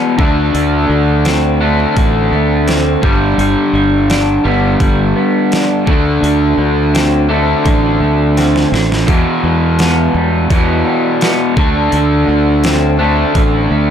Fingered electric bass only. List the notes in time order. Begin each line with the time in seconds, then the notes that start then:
0.19 D2
0.54 D2
0.89 D2
1.97 A1
2.32 D2
3.03 G1
3.38 G1
3.73 G1
4.45 G1
4.80 G1
5.87 D2
6.23 D2
6.58 D2
7.66 A1
8.00 D2
8.72 A1
9.08 E2
9.44 E2
10.14 E2
10.50 E2
11.57 D2
11.93 D2
12.28 D2
13.35 A1
13.71 D2